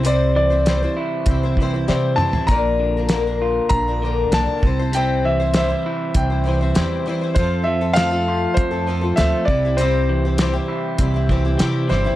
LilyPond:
<<
  \new Staff \with { instrumentName = "Grand piano" } { \time 4/4 \key c \mixolydian \tempo 4 = 99 d''8 d''4 r2 a''8 | bes''2 bes''4 a''4 | g''8 e''8 e''4 g''4. r8 | c''8 e''8 f''4 c''4 e''8 d''8 |
c''2. r8 c''8 | }
  \new Staff \with { instrumentName = "Twelve-string acoustic guitar" } { \time 4/4 \key c \mixolydian <c g c' e' c''>8. <c' e' c''>16 <c g c' e' c''>16 <c' e' c''>8. <g c' e' c''>16 <c' e' c''>16 <g c' e' c''>16 <c' e' c''>16 <c g c' e' c''>8 <g c' e' c''>16 <c' e' c''>16 | <bes, d f bes d' bes'>8. <f bes d' bes'>16 <bes, d f bes d' bes'>16 <f bes d' bes'>4 <f bes d' bes'>16 <f bes d' bes'>8 <bes, d f bes d' bes'>8 <g c' e' c''>16 <c' e' c''>16 | <c g c' e' c''>8. <c' e' c''>16 <c g c' e' c''>16 <c' e' c''>4 <c' e' c''>16 <g c' e' c''>16 <c' e' c''>16 <c g c' e' c''>8 <g c' e' c''>16 <c' e' c''>16 | <f c' f' a'>8. <c' f' a'>16 <f c' f' a'>16 <c' f' a'>4 <c' f' a'>16 <f c' f' a'>16 <c' f' a'>16 <f c' f' a'>8 <g c' e' g'>16 <c' e' g'>16 |
<c g c' e' g'>8. <c' e' g'>16 <c g c' e' g'>16 <c' e' g'>8. <g c' e' g'>16 <c' e' g'>16 <g c' e' g'>16 <c' e' g'>16 <c g c' e' g'>8 <g c' e' g'>16 <c' e' g'>16 | }
  \new Staff \with { instrumentName = "Clean electric guitar" } { \clef bass \time 4/4 \key c \mixolydian c8 e8 g8 e'8 c'8 e8 g8 e8 | bes,8 d8 bes8 f'8 d'8 d8 bes8 c8 | c8 e8 g8 e'8 c'8 e8 g8 e8 | f,8 f8 a8 f'8 c'8 f8 a8 c8 |
c8 e8 g8 e'8 c'8 e8 g8 e8 | }
  \new Staff \with { instrumentName = "Upright bass" } { \clef bass \time 4/4 \key c \mixolydian c,4. r8 c,4 c8 r8 | bes,,2 bes,,4 b,,16 r16 c,8~ | c,4. r8 c,4 e,8 r8 | f,2 f,4 d,16 r16 c,8~ |
c,4. r8 c,4 c8 g,,16 a,,16 | }
  \new DrumStaff \with { instrumentName = "Drums" } \drummode { \time 4/4 hh4 <hh sn>4 <hh bd>8 bd8 sn8 toml16 tomfh16 | <hh bd>4 <hh sn>4 <hh bd>4 <hh sn>8 bd8 | hh4 <hh sn>4 <hh bd>4 <hh sn>4 | <hh bd>4 <hh sn>4 <hh bd>4 <hh sn>8 bd8 |
hh4 <hh sn>4 <hh bd>8 bd8 <hh sn>8 sn8 | }
>>